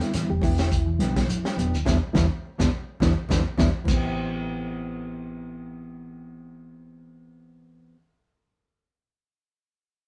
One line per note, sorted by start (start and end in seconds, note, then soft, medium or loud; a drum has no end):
0.00 0.39 D3 medium
0.00 0.40 G3 soft
0.00 0.40 B3 medium
0.00 0.30 E4 medium
0.00 snare soft
0.00 closed hi-hat soft
0.00 shekere soft
0.14 0.29 E3 medium
0.14 snare soft
0.14 closed hi-hat medium
0.14 shekere medium
0.29 0.42 E1 medium
0.29 0.42 G4 medium
0.29 high conga medium
0.42 0.97 E1 medium
0.42 0.51 E3 medium
0.42 0.59 B3 soft
0.42 0.59 D4 soft
0.42 1.82 E4 medium
0.42 0.58 G4 medium
0.42 kick medium
0.42 open hi-hat medium
0.42 high conga medium
0.42 shekere soft
0.58 0.73 D3 medium
0.58 0.75 G4 soft
0.58 muted clean electric guitar stroke soft
0.58 snare medium
0.58 shekere medium
0.72 kick medium
0.72 closed hi-hat medium
0.72 shekere medium
0.86 1.01 E3 medium
0.98 1.27 B1 medium
0.98 1.25 D3 soft
0.98 1.25 G3 soft
0.98 1.25 B3 medium
0.98 1.18 B3 medium
0.98 1.19 D4 medium
0.98 1.19 G4 medium
0.98 snare soft
0.98 closed hi-hat soft
0.98 high conga medium
0.98 shekere soft
1.16 kick medium
1.16 snare medium
1.16 closed hi-hat soft
1.16 shekere soft
1.28 closed hi-hat medium
1.28 high conga medium
1.28 shekere medium
1.44 1.59 G3 medium
1.44 1.57 D4 soft
1.44 1.58 G4 soft
1.44 snare medium
1.57 1.72 E1 medium
1.57 1.76 B3 medium
1.57 1.76 D4 medium
1.57 1.76 G4 medium
1.57 closed hi-hat soft
1.57 high conga medium
1.57 shekere medium
1.74 1.86 D2 medium
1.74 shekere medium
1.85 1.98 E2 medium
1.85 1.96 D3 medium
1.85 1.96 E3 medium
1.85 1.96 G3 medium
1.85 1.96 B3 medium
1.85 1.96 D4 medium
1.85 1.96 E4 medium
1.85 kick medium
1.85 snare medium
1.85 low conga medium
1.85 shekere medium
2.13 2.27 E2 medium
2.13 2.24 D3 medium
2.13 2.24 E3 medium
2.13 2.24 G3 medium
2.13 2.24 B3 medium
2.13 2.25 B3 medium
2.13 2.24 D4 medium
2.13 2.25 D4 medium
2.13 2.24 E4 medium
2.13 2.25 E4 medium
2.13 kick medium
2.13 snare medium
2.13 low conga medium
2.13 shekere medium
2.58 2.69 E2 medium
2.58 2.67 D3 medium
2.58 2.67 E3 medium
2.58 2.67 G3 medium
2.58 2.68 B3 medium
2.58 2.68 D4 medium
2.58 2.67 D4 medium
2.58 2.67 E4 medium
2.58 2.68 E4 medium
2.58 kick medium
2.58 snare medium
2.58 low conga medium
2.58 shekere medium
3.00 3.13 E2 medium
3.00 3.11 D3 medium
3.00 3.11 E3 medium
3.00 3.11 G3 medium
3.00 3.11 B3 medium
3.00 3.11 D4 medium
3.00 3.11 E4 medium
3.00 kick medium
3.00 snare medium
3.00 low conga medium
3.00 shekere medium
3.29 3.42 E2 medium
3.29 3.40 D3 medium
3.29 3.40 E3 medium
3.29 3.40 G3 medium
3.29 3.40 B3 medium
3.29 3.39 D4 medium
3.29 3.40 D4 medium
3.29 3.40 E4 medium
3.29 kick medium
3.29 snare medium
3.29 low conga medium
3.29 shekere medium
3.58 3.70 E2 medium
3.58 3.68 D3 medium
3.58 3.68 E3 medium
3.58 3.68 G3 medium
3.58 3.68 B3 medium
3.58 3.68 D4 medium
3.58 3.68 E4 medium
3.58 3.69 E4 medium
3.58 kick medium
3.58 snare medium
3.58 low conga medium
3.58 shekere medium
3.84 7.92 A1 medium
3.84 7.94 E3 medium
3.84 7.95 B3 medium
3.84 crash medium
3.84 low conga medium
3.88 4.22 G2 medium
3.88 7.97 C4 medium
3.88 kick medium
3.88 shekere medium
3.94 7.99 G4 medium